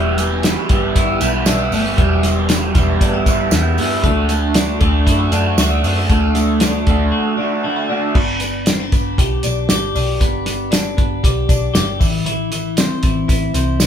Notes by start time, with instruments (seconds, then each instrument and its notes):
Already playing: picked electric bass E1, overdriven electric guitar E2 B2 E3 G3 B3 E4, clean electric guitar G3 E4
0.18 clean electric guitar G3, closed hi-hat, tambourine
0.43 clean electric guitar B3, snare, closed hi-hat, tambourine
0.69 picked electric bass G1, overdriven electric guitar E3 G3 B3 E4, clean electric guitar G3, kick, closed hi-hat, tambourine
0.95 picked electric bass G1, clean electric guitar E4, kick, closed hi-hat, tambourine
1.20 picked electric bass B1, overdriven electric guitar E3 G3 B3 E4, clean electric guitar B3, closed hi-hat, tambourine
1.32 overdriven electric guitar E3 G3 B3 E4
1.45 picked electric bass B1, overdriven electric guitar E3 G3 B3 E4, clean electric guitar D4, snare, closed hi-hat, tambourine
1.60 clean electric guitar E4
1.70 picked electric bass G1, overdriven electric guitar E3 G3 B3 E4, clean electric guitar A3, open hi-hat, tambourine
1.86 clean electric guitar B3
1.96 picked electric bass E1, overdriven electric guitar E2 B2 E3 G3 B3 E4, clean electric guitar G3, kick, closed hi-hat
2.23 clean electric guitar G3, snare, closed hi-hat, tambourine
2.49 clean electric guitar B3, snare, closed hi-hat, tambourine
2.75 picked electric bass E1, overdriven electric guitar E3 G3 B3 E4, clean electric guitar G3, kick, closed hi-hat, tambourine
3.01 picked electric bass G1, clean electric guitar D4, kick, closed hi-hat, tambourine
3.14 clean electric guitar E4
3.26 picked electric bass G1, overdriven electric guitar E3 G3 B3 E4, clean electric guitar B3, kick, closed hi-hat, tambourine
3.39 overdriven electric guitar E3 G3 B3 E4
3.51 picked electric bass E2, overdriven electric guitar E3 G3 B3, clean electric guitar E4, snare, closed hi-hat, tambourine
3.55 overdriven electric guitar E4
3.77 picked electric bass G2, overdriven electric guitar E3 G3 B3 E4, clean electric guitar B3, open hi-hat, tambourine
4.03 picked electric bass D2, overdriven electric guitar D3 A3 D4 F#4, clean electric guitar A3, kick, closed hi-hat
4.29 clean electric guitar A3, closed hi-hat, tambourine
4.54 clean electric guitar D4, snare, closed hi-hat, tambourine
4.80 picked electric bass D2, overdriven electric guitar D3 A3 D4 F#4, clean electric guitar A3, kick, closed hi-hat
5.06 picked electric bass F#2, clean electric guitar E4, kick, closed hi-hat, tambourine
5.19 clean electric guitar F#4
5.31 picked electric bass F#2, overdriven electric guitar D3 A3 D4 F#4, clean electric guitar D4, closed hi-hat, tambourine
5.44 overdriven electric guitar A3 D4 F#4
5.57 picked electric bass D2, overdriven electric guitar D3 A3 D4 F#4, clean electric guitar F#4, snare, closed hi-hat, tambourine
5.83 picked electric bass F#2, overdriven electric guitar D3 A3 D4 F#4, clean electric guitar C4, open hi-hat, tambourine
5.97 clean electric guitar D4
6.10 picked electric bass D2, overdriven electric guitar D3 A3 D4 F#4, clean electric guitar A3, kick, closed hi-hat, tambourine
6.35 clean electric guitar A3, snare, closed hi-hat, tambourine
6.60 clean electric guitar D4, snare, closed hi-hat, tambourine
6.86 picked electric bass D2, overdriven electric guitar D3 A3 D4 F#4, clean electric guitar A3, kick, closed hi-hat
7.12 clean electric guitar F#4
7.37 overdriven electric guitar D3 A3, clean electric guitar D4
7.42 overdriven electric guitar D4 F#4
7.52 overdriven electric guitar A3 D4 F#4
7.64 overdriven electric guitar D3 A3, clean electric guitar E4
7.68 overdriven electric guitar D4 F#4
7.76 clean electric guitar F#4
7.89 overdriven electric guitar D3 A3 D4, clean electric guitar D4
7.93 overdriven electric guitar F#4
8.15 picked electric bass G1, clean electric guitar B3, kick, crash
8.40 clean electric guitar B3, closed hi-hat, tambourine
8.66 clean electric guitar C4, snare, closed hi-hat, tambourine
8.80 clean electric guitar D4
8.92 picked electric bass G1, clean electric guitar B3, kick, closed hi-hat, tambourine
9.18 picked electric bass B1, clean electric guitar G4, kick, closed hi-hat, tambourine
9.43 picked electric bass B1, clean electric guitar D4, closed hi-hat, tambourine
9.69 picked electric bass G1, clean electric guitar G4, snare, closed hi-hat, tambourine
9.95 picked electric bass B1, clean electric guitar D4, open hi-hat, tambourine
10.21 picked electric bass G1, clean electric guitar B3, kick, closed hi-hat, tambourine
10.46 clean electric guitar B3, snare, closed hi-hat, tambourine
10.71 clean electric guitar D4, snare, closed hi-hat, tambourine
10.97 picked electric bass G1, clean electric guitar B3, kick, closed hi-hat
11.24 picked electric bass B1, clean electric guitar G4, kick, closed hi-hat, tambourine
11.49 picked electric bass B1, clean electric guitar D4, kick, closed hi-hat, tambourine
11.74 picked electric bass G1, clean electric guitar G4, snare, closed hi-hat, tambourine
12.00 picked electric bass A1, clean electric guitar E3, kick, open hi-hat, tambourine
12.26 clean electric guitar E3, closed hi-hat, tambourine
12.52 clean electric guitar E3, closed hi-hat, tambourine
12.77 clean electric guitar C4, snare, closed hi-hat, tambourine
13.03 picked electric bass A1, clean electric guitar E3, kick, closed hi-hat, tambourine
13.28 picked electric bass A1, clean electric guitar E4, kick, closed hi-hat, tambourine
13.54 picked electric bass C2, clean electric guitar C4, closed hi-hat, tambourine
13.80 picked electric bass C2, clean electric guitar E4, snare, closed hi-hat, tambourine